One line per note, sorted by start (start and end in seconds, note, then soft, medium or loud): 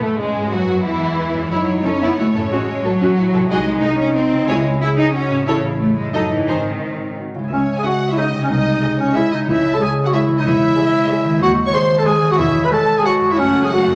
0.00 0.44 E2 soft
0.00 0.17 A2 soft
0.00 0.17 A3 soft
0.00 0.17 A3 medium
0.00 0.18 A3 soft
0.00 0.17 E4 soft
0.00 0.37 E4 soft
0.00 0.42 G#4 soft
0.00 0.46 B4 soft
0.18 0.51 G#2 soft
0.18 0.51 G#3 medium
0.18 0.51 G#3 soft
0.18 0.51 G#3 medium
0.18 0.51 C#4 soft
0.34 1.44 G#2 soft
0.38 1.37 E4 soft
0.43 1.49 G#4 soft
0.47 0.85 F#3 medium
0.47 0.85 F#4 soft
0.47 0.84 F#4 medium
0.47 1.51 B4 soft
0.51 0.85 F#2 medium
0.51 0.85 F#3 medium
0.51 1.19 B3 soft
0.84 1.50 E2 medium
0.84 1.50 E3 soft
0.84 1.52 E3 medium
0.84 1.50 E4 medium
1.19 1.51 E4 soft
1.33 2.44 F#2 soft
1.38 2.46 E4 soft
1.43 2.41 A4 soft
1.47 1.67 E4 soft
1.47 2.46 C#5 soft
1.47 3.46 C#5 soft
1.51 1.58 F#1 medium
1.51 1.84 F#3 medium
1.51 2.17 D#4 soft
1.51 1.67 E4 soft
1.85 1.92 F#1 soft
1.85 2.02 C#4 medium
1.85 1.92 E4 soft
1.85 1.92 A4 soft
2.01 2.08 F#1 soft
2.01 2.19 B3 medium
2.01 2.17 E4 medium
2.18 2.25 F#1 soft
2.18 2.52 A3 medium
2.18 2.50 C#4 soft
2.18 2.25 E4 soft
2.18 2.25 F#4 soft
2.33 2.41 F#1 soft
2.33 3.42 A2 soft
2.33 2.42 E4 soft
2.33 2.41 A4 soft
2.38 3.35 F#4 soft
2.42 3.47 A4 soft
2.47 3.49 C#5 soft
2.51 2.58 A1 medium
2.51 2.85 G#3 medium
2.51 2.67 C#4 soft
2.51 2.84 C#4 soft
2.51 2.67 F#4 soft
2.84 2.91 A1 soft
2.84 3.50 F#3 medium
2.84 3.17 F#4 medium
2.84 2.91 F#4 soft
2.84 2.91 A4 soft
3.01 3.07 A1 medium
3.01 3.16 C#4 medium
3.01 3.16 F#4 medium
3.17 3.24 A1 soft
3.17 3.50 E4 medium
3.17 3.24 F#4 soft
3.32 3.40 A1 soft
3.32 4.41 C3 medium
3.32 3.41 F#4 medium
3.32 3.40 A4 soft
3.36 4.43 F#4 soft
3.41 4.39 G#4 soft
3.46 4.48 D#5 soft
3.50 3.78 C2 medium
3.50 3.83 G#3 medium
3.50 4.47 D#4 medium
3.50 3.66 F#4 medium
3.50 3.66 G#4 medium
3.50 3.65 D#5 medium
3.83 3.99 D#4 medium
4.00 4.16 C#4 medium
4.16 4.48 C4 medium
4.31 5.39 C#3 soft
4.36 5.32 E4 soft
4.40 5.44 G#4 soft
4.45 4.81 E4 medium
4.45 4.64 G#4 medium
4.45 5.41 C#5 soft
4.45 4.64 C#5 medium
4.49 4.76 C#2 medium
4.49 4.81 G#3 medium
4.49 4.64 E4 medium
4.81 4.88 E4 medium
4.81 5.14 G#4 medium
4.98 5.14 D#4 medium
5.14 5.46 C#4 medium
5.14 5.47 F#4 medium
5.29 6.07 A2 soft
5.34 6.09 E4 soft
5.38 6.04 A4 soft
5.43 5.74 A1 medium
5.43 6.13 C#5 soft
5.47 5.79 C#3 medium
5.47 5.62 E4 medium
5.47 6.13 E4 medium
5.47 5.62 A4 soft
5.47 5.62 C#5 medium
5.80 5.97 A3 medium
5.96 6.41 F#2 soft
5.96 6.14 G#3 medium
6.01 7.47 D#4 soft
6.05 6.45 A4 soft
6.10 6.42 F#1 soft
6.10 6.30 A4 soft
6.10 6.43 D#5 soft
6.14 6.31 F#3 medium
6.14 6.30 D#4 soft
6.14 6.48 D#4 soft
6.14 6.30 D#5 soft
6.31 7.45 G#2 soft
6.31 6.48 E3 medium
6.35 7.47 C4 soft
6.40 7.42 G#4 soft
6.44 6.77 G#1 soft
6.44 6.64 G#4 soft
6.44 6.65 C5 soft
6.44 7.51 D#5 soft
6.49 7.18 D#3 soft
6.49 6.80 C4 soft
6.49 6.65 D#4 soft
6.85 7.16 C4 soft
7.19 7.35 F#4 medium
7.34 8.43 C#3 soft
7.34 7.52 E4 soft
7.39 8.36 G#3 soft
7.44 8.41 G#4 soft
7.48 7.78 C#2 medium
7.48 8.50 E5 soft
7.52 7.79 C#2 medium
7.52 7.63 C#4 medium
7.52 7.76 C#5 medium
7.76 7.85 G#4 medium
7.76 7.85 G#5 soft
7.85 8.10 C#4 soft
7.85 8.10 F#4 medium
7.85 8.10 G#4 medium
7.85 8.10 E5 soft
7.85 8.10 F#5 medium
8.09 8.17 E4 medium
8.09 8.18 E5 medium
8.17 8.43 C#4 medium
8.17 8.29 D#4 medium
8.17 8.43 G#4 medium
8.17 8.42 D#5 medium
8.17 8.42 E5 medium
8.33 9.41 C3 medium
8.37 9.34 G#3 soft
8.42 8.52 C#4 medium
8.42 9.38 G#4 soft
8.42 8.51 C#5 soft
8.46 8.99 D#4 medium
8.46 9.48 D#5 soft
8.46 8.98 D#5 medium
8.51 8.77 C2 medium
8.83 9.08 G#3 medium
8.83 9.08 G#4 medium
8.83 9.08 D#5 medium
8.99 9.16 C#4 medium
8.99 9.16 C#5 medium
9.16 9.40 G#3 medium
9.16 9.32 E4 medium
9.16 9.40 G#4 medium
9.16 9.40 D#5 medium
9.16 9.32 E5 medium
9.31 10.38 C#3 soft
9.31 9.49 D#4 medium
9.31 9.38 D#5 medium
9.35 10.31 G#3 soft
9.39 10.36 G#4 soft
9.44 10.40 C#5 soft
9.48 9.74 C#2 medium
9.48 9.93 C#3 medium
9.48 9.76 E4 medium
9.48 9.73 E5 medium
9.73 9.83 A4 medium
9.73 9.81 A5 medium
9.81 10.05 G#3 medium
9.81 10.05 G#4 medium
9.81 10.08 G#4 medium
9.81 10.05 C#5 medium
9.81 9.90 G#5 medium
10.05 10.15 F#4 medium
10.05 10.08 F#5 medium
10.13 10.37 G#3 medium
10.13 10.41 E4 medium
10.13 10.37 G#4 medium
10.13 10.37 C#5 medium
10.13 10.22 E5 medium
10.28 11.34 E3 medium
10.32 11.27 G#3 soft
10.37 10.48 D#4 medium
10.37 11.32 G#4 soft
10.37 10.45 D#5 medium
10.41 11.41 C#5 soft
10.45 10.71 E1 medium
10.45 10.71 E2 medium
10.45 11.41 E4 loud
10.45 11.42 E5 medium
10.77 11.01 G#3 medium
10.77 11.01 G#4 medium
10.77 11.01 C#5 medium
11.09 11.33 G#3 medium
11.09 11.33 G#4 medium
11.09 11.34 C#5 medium
11.24 12.32 D#3 medium
11.29 12.25 G#3 medium
11.33 12.29 G#4 soft
11.38 12.39 C5 medium
11.38 11.50 F#5 medium
11.42 11.67 D#2 medium
11.42 11.68 D#2 medium
11.42 11.53 F#4 medium
11.66 11.75 C#5 medium
11.66 11.74 C#6 medium
11.73 11.98 G#3 medium
11.73 11.98 G#4 medium
11.73 12.00 C5 medium
11.73 11.99 C5 medium
11.73 11.98 C6 medium
11.99 12.08 A4 medium
11.99 12.07 A5 medium
12.06 12.31 G#3 medium
12.06 12.31 G#4 medium
12.06 12.33 G#4 medium
12.06 12.31 C5 medium
12.06 12.31 G#5 medium
12.22 13.31 E3 medium
12.26 13.33 G#3 soft
12.30 12.41 F#4 medium
12.30 13.36 G#4 medium
12.30 12.39 F#5 medium
12.35 12.65 E1 medium
12.35 13.33 C#5 medium
12.35 12.63 E5 medium
12.39 12.65 E2 medium
12.39 12.67 E4 medium
12.63 12.74 B4 medium
12.63 12.67 B5 medium
12.71 12.97 G#3 medium
12.71 12.97 G#4 medium
12.71 13.00 A4 medium
12.71 12.97 C#5 medium
12.71 12.96 A5 medium
12.97 13.08 G#4 medium
12.97 13.01 G#5 medium
13.05 13.30 G#3 medium
13.05 13.34 F#4 medium
13.05 13.30 G#4 medium
13.05 13.30 C#5 medium
13.05 13.13 F#5 medium
13.20 13.86 F#2 medium
13.25 13.90 A3 soft
13.29 13.40 E4 medium
13.29 13.95 F#4 soft
13.29 13.39 E5 medium
13.34 13.95 C#5 medium
13.38 13.95 F#1 medium
13.38 13.95 F#2 medium
13.38 13.69 A3 medium
13.38 13.66 C#4 medium
13.38 13.69 F#4 medium
13.38 13.64 C#5 medium
13.38 13.69 F#5 medium
13.63 13.74 G#4 medium
13.63 13.71 G#5 medium
13.71 13.95 A3 medium
13.71 13.95 F#4 medium
13.71 13.95 F#5 medium
13.87 13.95 F#2 soft
13.92 13.95 A3 soft